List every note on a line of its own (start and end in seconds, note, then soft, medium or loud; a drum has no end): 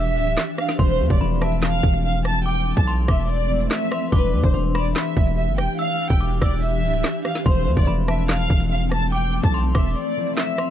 0.00 0.18 E1 loud
0.00 0.76 E3 medium
0.00 0.79 E3 medium
0.00 0.84 G3 medium
0.00 0.75 B3 medium
0.00 0.76 D4 medium
0.00 0.76 G4 medium
0.00 0.55 E5 medium
0.16 0.36 D1 loud
0.27 closed hi-hat medium
0.37 snare loud
0.37 clap medium
0.58 0.75 F5 medium
0.58 cross-stick loud
0.58 open hi-hat soft
0.69 snare medium
0.78 1.01 E1 loud
0.78 4.10 E3 medium
0.78 3.48 F3 medium
0.78 3.49 A3 medium
0.78 4.09 A3 medium
0.78 4.09 C4 medium
0.78 3.50 C4 medium
0.78 1.09 C5 loud
0.78 1.18 C6 loud
0.78 kick loud
0.78 closed hi-hat medium
1.00 1.10 E2 loud
1.10 1.20 E1 loud
1.10 1.19 D5 medium
1.10 kick loud
1.10 closed hi-hat medium
1.21 1.81 E1 loud
1.21 1.41 B5 medium
1.41 1.59 E5 medium
1.41 1.61 A5 medium
1.41 cross-stick loud
1.52 closed hi-hat medium
1.62 2.02 F5 loud
1.62 snare loud
1.62 clap medium
1.62 closed hi-hat medium
1.83 2.73 E1 loud
1.83 kick loud
1.94 closed hi-hat medium
2.04 2.22 F5 medium
2.25 2.42 A5 medium
2.25 cross-stick loud
2.25 closed hi-hat medium
2.45 2.75 G5 medium
2.45 2.85 D6 medium
2.45 closed hi-hat medium
2.77 3.07 B1 loud
2.77 2.86 A5 medium
2.77 kick loud
2.77 closed hi-hat medium
2.87 3.07 C6 medium
2.87 closed hi-hat medium
3.08 3.68 E1 loud
3.08 3.26 E5 medium
3.08 3.28 D6 medium
3.08 kick medium
3.08 cross-stick loud
3.08 closed hi-hat medium
3.29 3.68 D5 medium
3.29 closed hi-hat medium
3.49 4.17 F3 medium
3.49 6.82 A3 medium
3.49 4.19 C4 soft
3.49 6.12 E4 medium
3.60 closed hi-hat medium
3.71 4.10 E5 medium
3.71 snare loud
3.71 clap medium
3.91 4.11 C6 medium
3.91 cross-stick loud
3.91 closed hi-hat medium
4.11 4.35 E1 loud
4.11 7.46 E3 medium
4.11 7.42 E3 medium
4.11 7.51 G3 medium
4.11 7.42 B3 medium
4.11 7.42 D4 medium
4.11 7.42 G4 medium
4.11 4.42 B4 loud
4.11 4.51 D6 loud
4.11 kick loud
4.11 closed hi-hat medium
4.33 4.43 E2 loud
4.43 4.54 E1 loud
4.43 4.52 C5 medium
4.43 kick loud
4.43 closed hi-hat medium
4.54 4.94 E1 loud
4.54 4.74 C6 medium
4.75 4.92 D5 medium
4.75 4.95 B5 loud
4.75 cross-stick loud
4.85 closed hi-hat medium
4.96 5.35 E5 medium
4.96 snare loud
4.96 clap medium
4.96 closed hi-hat medium
5.17 5.49 E1 loud
5.17 kick loud
5.27 closed hi-hat medium
5.37 5.55 E5 medium
5.48 5.60 G1 loud
5.58 5.68 E1 loud
5.58 5.76 G5 medium
5.58 cross-stick loud
5.58 closed hi-hat medium
5.79 6.08 F5 loud
5.79 6.18 E6 loud
5.79 closed hi-hat medium
6.10 6.40 E1 loud
6.10 6.19 G5 medium
6.10 kick loud
6.10 closed hi-hat medium
6.21 6.40 D6 medium
6.21 closed hi-hat medium
6.41 6.85 E1 loud
6.41 6.59 D5 medium
6.41 6.61 E6 medium
6.41 kick medium
6.41 cross-stick loud
6.41 closed hi-hat medium
6.62 7.21 E5 medium
6.62 closed hi-hat medium
6.83 7.03 D1 loud
6.94 closed hi-hat medium
7.04 snare loud
7.04 clap medium
7.25 7.42 F5 medium
7.25 cross-stick loud
7.25 open hi-hat medium
7.35 snare medium
7.45 7.68 E1 loud
7.45 10.70 E3 medium
7.45 10.15 F3 medium
7.45 10.16 A3 medium
7.45 10.70 A3 medium
7.45 10.70 C4 medium
7.45 10.16 C4 medium
7.45 7.75 C5 loud
7.45 7.85 C6 loud
7.45 kick loud
7.45 closed hi-hat medium
7.66 7.76 E2 loud
7.77 7.87 E1 loud
7.77 7.86 D5 medium
7.77 kick loud
7.77 closed hi-hat medium
7.87 8.47 E1 loud
7.87 8.07 B5 medium
8.08 8.26 E5 medium
8.08 8.28 A5 medium
8.08 cross-stick loud
8.19 closed hi-hat medium
8.29 8.68 F5 loud
8.29 snare loud
8.29 clap medium
8.29 closed hi-hat medium
8.50 9.40 E1 loud
8.50 kick loud
8.60 closed hi-hat medium
8.71 8.88 F5 medium
8.92 9.09 A5 medium
8.92 cross-stick loud
8.92 closed hi-hat medium
9.12 9.42 G5 medium
9.12 9.52 D6 loud
9.12 closed hi-hat medium
9.44 9.74 B1 loud
9.44 9.52 A5 medium
9.44 kick loud
9.44 closed hi-hat medium
9.54 9.74 C6 medium
9.54 closed hi-hat medium
9.75 9.95 E1 loud
9.75 9.92 E5 medium
9.75 9.95 D6 medium
9.75 kick medium
9.75 cross-stick loud
9.75 closed hi-hat medium
9.96 10.35 D5 medium
9.96 closed hi-hat medium
10.16 10.70 F3 medium
10.16 10.70 A3 medium
10.16 10.70 C4 medium
10.16 10.70 E4 medium
10.27 closed hi-hat medium
10.37 10.70 E5 medium
10.37 snare loud
10.37 clap medium
10.58 10.70 C6 medium
10.58 cross-stick loud
10.58 closed hi-hat medium